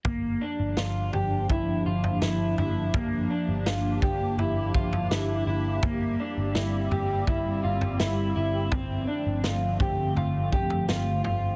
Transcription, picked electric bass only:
\new Staff \with { instrumentName = "Picked electric bass" } { \clef bass \time 4/4 \key g \dorian \tempo 4 = 83 g,,8 r16 g,,16 g,,8 g,,8 g,,8 g,,8 g,,8 g,,8 | g,,8 r16 g,,16 g,,8 g,,8 g,,8 g,,8 g,,8 g,,8 | g,,8 r16 g,,16 g,,8 g,,8 g,,8 g,,8 g,,8 g,,8 | r8. g,,16 g,,8 g,,8 g,,8 g,,8 g,,8 g,,8 | }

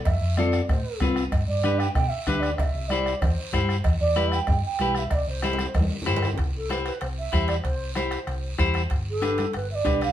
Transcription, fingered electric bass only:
\new Staff \with { instrumentName = "Fingered electric bass" } { \clef bass \time 4/4 \key c \major \tempo 4 = 190 f,8 f,4. a,8 r8 c,4 | g,8 g,4. b,8 r8 d,4 | c,8 c,4. e,8 r8 g,4 | e,8 e,4. g,8 r8 b,,4 |
c,8 c,4. e,8 r8 g,4 | c,2 c,4 e,4 | c,2 c,4 e,4 | g,,2 g,,4 b,,4 | }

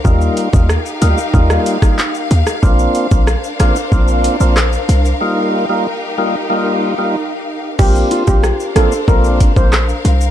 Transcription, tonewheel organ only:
\new Staff \with { instrumentName = "Tonewheel organ" } { \time 4/4 \key bes \major \tempo 4 = 93 <g bes ees' f'>8. <g bes ees' f'>16 r8 <g bes ees' f'>16 r16 <g bes ees' f'>8. <g bes ees' f'>16 r4 | <bes c' d' f'>8. <bes c' d' f'>16 r8 <bes c' d' f'>16 r16 <bes c' d' f'>8. <bes c' d' f'>16 r4 | <g bes ees' f'>8. <g bes ees' f'>16 r8 <g bes ees' f'>16 r16 <g bes ees' f'>8. <g bes ees' f'>16 r4 | <bes c' d' f'>8. <bes c' d' f'>16 r8 <bes c' d' f'>16 r16 <bes c' d' f'>8. <bes c' d' f'>16 r4 | }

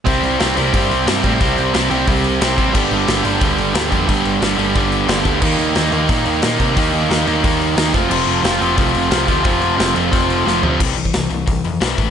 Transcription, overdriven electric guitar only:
\new Staff \with { instrumentName = "Overdriven electric guitar" } { \clef bass \time 4/4 \key f \lydian \tempo 4 = 179 <c g c'>4 <c g c'>8 <c g c'>8 <c g c'>4 <c g c'>8 <c g c'>8 | <c g c'>4 <c g c'>8 <c g c'>8 <c g c'>4 <c g c'>8 <c g c'>8 | <g, d g>4 <g, d g>8 <g, d g>8 <g, d g>4 <g, d g>8 <g, d g>8 | <g, d g>4 <g, d g>8 <g, d g>8 <g, d g>4 <g, d g>8 <g, d g>8 |
<ees bes ees'>4 <ees bes ees'>8 <ees bes ees'>8 <ees bes ees'>4 <ees bes ees'>8 <ees bes ees'>8 | <ees bes ees'>4 <ees bes ees'>8 <ees bes ees'>8 <ees bes ees'>4 <ees bes ees'>8 <f, c f>8 | <f, c f>4 <f, c f>8 <f, c f>8 <f, c f>4 <f, c f>8 <f, c f>8 | <f, c f>4 <f, c f>8 <f, c f>8 <f, c f>4 <f, c f>8 <f, c f>8 |
r1 | }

